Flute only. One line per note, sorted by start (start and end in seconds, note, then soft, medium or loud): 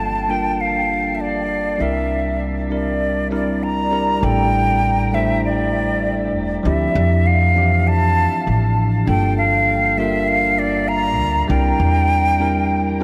0.00 0.32 A5 loud
0.30 0.62 G5 medium
0.61 1.16 F5 medium
1.15 1.22 E5 medium
1.21 1.82 D5 medium
1.81 2.45 E5 medium
2.72 3.28 D5 medium
3.34 3.65 D5 medium
3.63 4.25 A#5 loud
4.24 5.16 G5 loud
5.14 5.44 E5 medium
5.45 6.31 D5 medium
6.66 7.28 E5 medium
7.27 7.89 F5 loud
7.88 8.78 A5 loud
9.08 9.36 G5 loud
9.38 9.99 F5 loud
9.98 10.29 E5 medium
10.28 10.60 F5 loud
10.59 10.90 D5 medium
10.88 11.49 A#5 loud
11.49 13.04 G5 loud